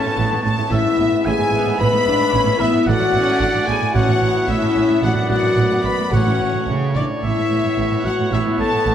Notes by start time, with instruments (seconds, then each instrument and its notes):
Already playing: trombone section A2 B3, viola section C#4, french horn section A4, trumpet C#5, oboe A5, violin section A5, flute section A5
0.05 cello section A2
0.17 double bass section A1, cello section A2, viola section B3
0.32 cello section A2
0.43 double bass section A1, cello section A2, viola section A3, french horn section A4, oboe A5, violin section A5, flute section A5
0.58 cello section A2
0.70 double bass section A1, trombone section G#2, cello section A2, viola section C#4, french horn section E4, violin section E5, flute section E5, oboe E5, trumpet E5
0.85 cello section A2
0.98 double bass section A1, cello section A2, viola section B3
1.12 cello section A2
1.25 double bass section A1, cello section A2, viola section C#4, french horn section G#4, violin section G#5, flute section G#5, oboe G#5
1.39 cello section A2
1.52 double bass section A1, cello section A2, viola section B3
1.65 cello section A2
1.79 double bass section A1, cello section A2, viola section B3, french horn section B4, flute section B5, violin section B5, oboe B5
1.93 cello section A2
2.06 double bass section A1, cello section A2, viola section D4
2.20 cello section A2
2.33 double bass section A1, cello section A2, viola section C#4
2.46 cello section A2
2.59 double bass section A1, cello section A2, viola section B3, french horn section E4, flute section E5, violin section E5, oboe E5
2.73 cello section A2
2.86 double bass section A1, trombone section A2 A3, timpani A2, cello section A2, viola section A3, french horn section F#4, trumpet D5, oboe F#5, violin section F#5, flute section F#5
3.01 cello section A2
3.13 double bass section A1, cello section A2, viola section C#4
3.28 cello section A2
3.40 double bass section A1, cello section A2, viola section D4
3.55 cello section A2
3.66 double bass section A1, cello section A2, viola section B3, french horn section G#4, violin section G#5, oboe G#5, flute section G#5
3.81 cello section A2
3.93 double bass section A1, cello section A2, timpani A2, trombone section B3, viola section C#4, french horn section F#4, trumpet C#5, violin section F#5, flute section F#5, oboe F#5
4.08 cello section A2
4.21 double bass section A1, cello section A2, viola section B3
4.34 cello section A2
4.48 double bass section A1, cello section A2, viola section C#4, french horn section E4, violin section E5, flute section E5, oboe E5
4.62 cello section A2
4.75 double bass section A1, cello section A2
4.88 cello section A2
5.02 double bass section A1, trombone section F#2, cello section A2, timpani A2, viola section D4, french horn section F#4, trumpet D5, flute section F#5, violin section F#5, oboe F#5
5.16 cello section A2
5.29 double bass section A1, cello section A2, french horn section F#4, flute section F#5, oboe F#5, violin section F#5
5.43 cello section A2
5.57 double bass section A1, cello section A2, viola section B3
5.71 cello section A2
5.83 double bass section A1, cello section A2, french horn section B4, violin section B5, oboe B5, flute section B5
5.98 cello section A2
6.10 double bass section A1, trombone section A2 A3, cello section A2, timpani A2, viola section C#4, french horn section F#4, trumpet C#5, violin section F#5, flute section F#5, oboe F#5
6.26 cello section A2
6.39 double bass section A1, cello section A2
6.54 cello section A2
6.67 double bass section A1, cello section C#3
6.94 double bass section A1, cello section A2, french horn section D4, violin section D5, flute section D5, oboe D5
7.22 double bass section A1, cello section A2, trombone section B3, french horn section E4, flute section E5, violin section E5, oboe E5
7.37 cello section A2
7.50 double bass section A1, cello section A2
7.65 cello section A2
7.78 double bass section A1, cello section A2
7.92 cello section A2
8.04 double bass section A1, cello section A2, french horn section F#4, flute section F#5, violin section F#5, oboe F#5
8.19 cello section A2
8.31 double bass section A1, cello section A2, viola section B3, french horn section E4, violin section E5, flute section E5, oboe E5
8.46 cello section A2
8.58 double bass section A1, cello section A2, french horn section A4, flute section A5, violin section A5, oboe A5
8.73 cello section A2
8.86 double bass section A1, cello section A2, viola section A3